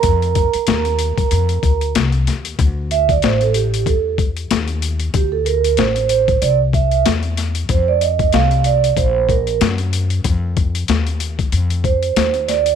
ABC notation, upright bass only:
X:1
M:4/4
L:1/16
Q:"Swing 16ths" 1/4=94
K:Dphr
V:1 name="Upright bass" clef=bass
F,,3 z E,,3 z F,,2 D,,2 C,,2 E,,2 | D,,4 A,,,4 =E,,4 _E,,4 | D,,4 A,,,4 C,,4 =E,,4 | F,,4 C,,4 B,,,4 ^F,,4 |
F,,4 E,,4 F,,4 E,,4 |]